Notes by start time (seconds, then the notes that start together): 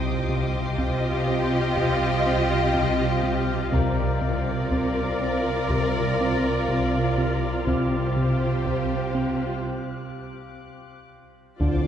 Already playing: C2 C3 F4 G4 D#5 F5 C6 D6 D#6
0.29 C3
0.78 C4, taiko
1.27 C4
1.77 C3, taiko
2.26 C4
2.74 C3 G5, taiko
3.23 C3
3.72 C2 C3 F4 A#4 D5 F5 A#5 D6 A6, taiko
4.21 C3
4.71 C4 F6, taiko
5.21 C4
5.69 C3, taiko
6.20 C4
6.68 C3, taiko
7.18 C3
7.65 C3 G4 C5, taiko
8.16 C3
8.65 C4, taiko
9.15 C4
9.49 F#6
11.59 D2 A2 D3 C4 D4 F4 A4 C5 D5 F5 D6, taiko, sub drop